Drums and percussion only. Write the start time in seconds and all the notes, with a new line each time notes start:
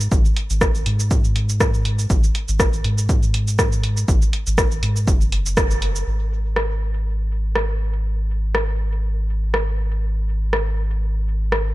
0.00 shaker
0.12 kick, shaker
0.25 shaker
0.36 closed hi-hat
0.50 shaker
0.61 kick, cross-stick, shaker
0.75 shaker
0.86 closed hi-hat
1.00 shaker
1.11 kick, shaker
1.24 shaker
1.36 closed hi-hat
1.49 shaker
1.60 kick, cross-stick, shaker
1.74 shaker
1.85 closed hi-hat
1.99 shaker
2.10 kick, shaker
2.24 shaker
2.35 closed hi-hat
2.48 shaker
2.60 kick, cross-stick, shaker
2.73 shaker
2.84 closed hi-hat
2.98 shaker
3.09 kick, shaker
3.23 shaker
3.34 closed hi-hat
3.48 shaker
3.59 kick, cross-stick, shaker
3.72 shaker
3.84 closed hi-hat
3.97 shaker
4.08 kick, shaker
4.22 shaker
4.33 closed hi-hat
4.47 shaker
4.58 kick, cross-stick, shaker
4.72 shaker
4.83 closed hi-hat
4.96 shaker
5.08 kick, shaker
5.21 shaker
5.32 closed hi-hat
5.46 shaker
5.57 kick, cross-stick, shaker
5.71 shaker
5.82 closed hi-hat
5.96 shaker
6.56 cross-stick
7.55 cross-stick
8.55 cross-stick
9.54 cross-stick
10.53 cross-stick
11.52 cross-stick